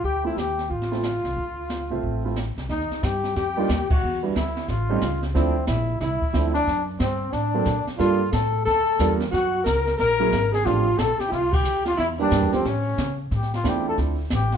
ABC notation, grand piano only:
X:1
M:4/4
L:1/8
Q:"Swing" 1/4=181
K:Dm
V:1 name="Grand piano"
z [A,CEF] z3 [A,CEF] z2 | z3 [A,CFe]2 [A,CEF] z2 | z4 z [G,B,D_EF] z2 | z [G,=B,DE^F] z3 [G,A,^B,^C_E] z2 |
[F,A,CDE] z4 z [F,A,CDE] z | z4 z [^F,B,CDA] z2 | [G,B,DFA] z4 z [G,B,DFB] z | z4 z [^F,^A,^CE^G] z2 |
[F,A,CDG] z6 z | z [E,G,B,DG]2 [F,A,C^CG] z4 | z2 [A,CDEF]3 z3 |]